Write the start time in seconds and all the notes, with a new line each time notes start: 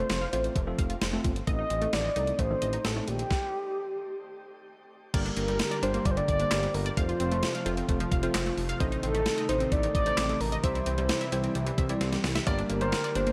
Already playing: C5
0.00 A3 C4 F4 A4
0.10 F1 F3, snare, closed hi-hat
0.21 F5
0.33 A1 A3 C4 F4 C5, closed hi-hat
0.44 closed hi-hat
0.56 F1 A3, kick, closed hi-hat
0.67 F3 A3 C4 F4 A4
0.79 F1 F5, kick, closed hi-hat
0.90 F4, closed hi-hat
1.01 F1 C4, snare, closed hi-hat
1.13 A3 C4 F4 A4
1.24 G1 F3, kick, closed hi-hat
1.36 closed hi-hat
1.47 A1 A3 C4 D#4 A4 D#5, kick, closed hi-hat
1.59 D#4
1.70 A1 C4, closed hi-hat
1.82 A3 C4 D#4 A4, closed hi-hat
1.93 A1 D#3 D5, snare, closed hi-hat
2.05 D#5
2.16 C2 A3 C4 D#4 A4, closed hi-hat
2.27 closed hi-hat
2.39 A1 A3 C5, kick, closed hi-hat
2.50 D#3 A3 C4 D#4 A4
2.62 A1 D#5, closed hi-hat
2.73 D#4, closed hi-hat
2.85 A1 C4 A4, snare, closed hi-hat
2.96 A3 C4 D#4 A4
3.08 A#1 D#3 G4, closed hi-hat
3.19 closed hi-hat
3.31 kick, snare
5.14 G1 D3 G3 A#3 D4 G4 A#4 D5, kick, closed hi-hat, crash
5.25 D4, closed hi-hat
5.37 G1 A#3 A#4, closed hi-hat
5.48 G3, closed hi-hat
5.59 A#4, snare, closed hi-hat
5.71 D5, closed hi-hat
5.83 G1 G3 A#3 D4 G4 A#4 C5, closed hi-hat
5.94 A#3, closed hi-hat
6.05 G1 G3 D5, kick, closed hi-hat
6.11 C5
6.17 D3 D5, closed hi-hat
6.28 G1 D5, kick, closed hi-hat
6.40 G3 A#3 D4 G4 C5, closed hi-hat
6.51 G1 A#3, snare, clap, closed hi-hat
6.63 G3, closed hi-hat
6.74 G1 D3 A#4, open hi-hat
6.86 D5, closed hi-hat
6.97 F1 C3 F3 A3 C4 F4 A4 C5 F5, kick, closed hi-hat
7.09 F4, closed hi-hat
7.20 F1 C4, closed hi-hat
7.32 A3, closed hi-hat
7.43 snare, closed hi-hat
7.55 F5, closed hi-hat
7.66 F1 A3 C4 F4 A4 C5, closed hi-hat
7.77 C4, closed hi-hat
7.89 F1 A3, kick, closed hi-hat
8.00 F3, closed hi-hat
8.12 F1 F5, kick, closed hi-hat
8.23 A3 C4 F4 A4 C5, closed hi-hat
8.34 F1 C4, snare, clap, closed hi-hat
8.46 A3, closed hi-hat
8.57 F1 F3, open hi-hat
8.69 F5, closed hi-hat
8.80 A1 D#3 A3 C4 D#4 A4 C5 D#5, kick, closed hi-hat
8.92 D#4, closed hi-hat
9.03 A1 C4 A4, closed hi-hat
9.15 A3, closed hi-hat
9.26 snare, closed hi-hat
9.38 D#5, closed hi-hat
9.49 A1 A3 C4 D#4 A4 C5, closed hi-hat
9.60 C4, closed hi-hat
9.72 A1 A3 D5, kick, closed hi-hat
9.83 D#3, closed hi-hat
9.95 A1 D5 D#5, kick, closed hi-hat
10.06 A3 C4 D#4 A4 C5, closed hi-hat
10.18 A1 C4, snare, clap, closed hi-hat
10.29 A3, closed hi-hat
10.40 A1 D#3 A#4, open hi-hat
10.52 D#5, closed hi-hat
10.64 C2 E3 G3 C4 E4 G4 C5 E5, kick, closed hi-hat
10.75 E4, closed hi-hat
10.86 C2 C4, closed hi-hat
10.98 G3, closed hi-hat
11.09 snare, closed hi-hat
11.21 E5, closed hi-hat
11.32 C2 G3 C4 E4 G4 C5, closed hi-hat
11.44 C4, closed hi-hat
11.55 C2 G3, closed hi-hat
11.67 E3, closed hi-hat
11.78 C2 E5, kick, closed hi-hat
11.89 G3 C4 E4 G4 D5, closed hi-hat
12.01 C2 C4, snare, closed hi-hat
12.12 G3, snare, closed hi-hat
12.24 C2 E3, snare, open hi-hat
12.35 E5, snare, closed hi-hat
12.47 G1 D3 G3 A#3 D4 G4 A#4 D5, kick, closed hi-hat
12.58 D4, closed hi-hat
12.70 G1 A#3 A#4, closed hi-hat
12.81 G3 C5, closed hi-hat
12.92 snare, closed hi-hat
13.04 D5, closed hi-hat
13.15 G1 G3 A#3 D4 G4 A#4 C5, closed hi-hat
13.27 A#3, closed hi-hat